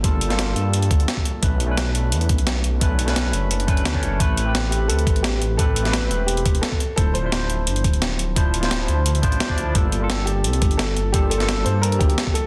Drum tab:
HH |x-xxx-x-xxxxx-x-|x-x-x-x-xxxxx-x-|x-xxx-x-xxxxx-x-|x-x-x-x-xxxxx-x-|
SD |---oo-------o---|----o-------o---|---oo-------o---|----o-------o---|
BD |o---------o--o--|o---------o-----|o---------o--o--|o---------o-----|

HH |x-xxx-x-xxxxx-x-|x-x-x-x-xxxxx-x-|x-xxx-x-xxxxx-x-|x-x-x-x-xxxxx-x-|
SD |---oo-------o---|----o-------o---|---oo-------o---|----o-------o---|
BD |o---------o--o--|o---------o-----|o---------o--o--|o---------o-----|

HH |x-xxx-x-xxxxx-x-|
SD |---oo-------o---|
BD |o---------o--o--|